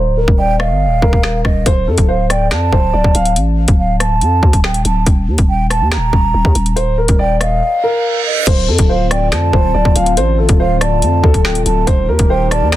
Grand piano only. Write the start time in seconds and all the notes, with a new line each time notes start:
Already playing: C5
0.17 A#4
0.38 D5
0.60 D#5
1.03 A#4
1.66 C5
1.88 A4
2.08 C5
2.30 D5
2.72 C5
2.93 D5
3.15 F5
6.76 C5
6.98 A#4
7.19 D5
7.41 D#5
7.84 A#4
8.47 C5
8.68 A4
8.89 C5
9.11 D5
9.53 C5
9.74 D5
9.96 F5
10.17 C5
10.38 A4
10.60 C5
10.81 D5
11.23 A4
11.87 C5
12.09 A#4
12.30 C5
12.51 D5